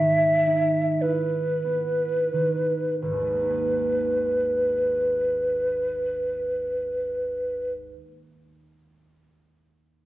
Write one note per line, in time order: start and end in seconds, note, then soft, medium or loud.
0.00 3.06 G#2 soft
0.00 2.32 D#3 soft
0.00 1.63 B3 soft
0.00 0.46 D#4 soft
0.00 1.03 E5 medium
0.47 3.40 D#4 soft
1.02 3.07 E4 soft
1.02 3.00 B4 soft
1.65 5.55 B3 soft
2.33 3.07 D#3 soft
3.00 7.89 G#1 soft
3.00 7.73 B4 soft
3.12 7.99 D#2 soft
3.22 8.09 G#3 soft
3.31 8.18 A#3 soft
3.41 8.28 D#4 soft
3.50 8.37 G#4 soft